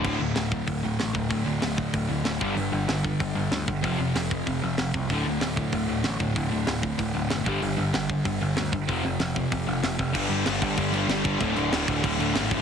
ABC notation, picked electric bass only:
X:1
M:4/4
L:1/8
Q:1/4=190
K:Glyd
V:1 name="Picked electric bass" clef=bass
D,,, D,,, D,,,2 D,,, D,,, A,,, D,,, | D,,, D,,, D,,,2 D,,, D,,, D,,, G,,, | G,,, G,,, G,,,2 G,,, G,,, D,, G,,, | =F,,, F,,, F,,,2 F,,, F,,, F,,, =C,, |
D,,, D,,, D,,,2 D,,, D,,, A,,, D,,, | D,,, D,,, D,,,2 D,,, D,,, F,,, G,,, | G,,, G,,, G,,,2 G,,, G,,, D,, G,,, | =F,,, F,,, F,,,2 F,,, F,,, F,,, F,,, |
G,,, G,,, G,,, G,,, G,,,2 G,,,2 | D,,, D,,, D,,, D,,, D,,, D,,, ^G,,,2 |]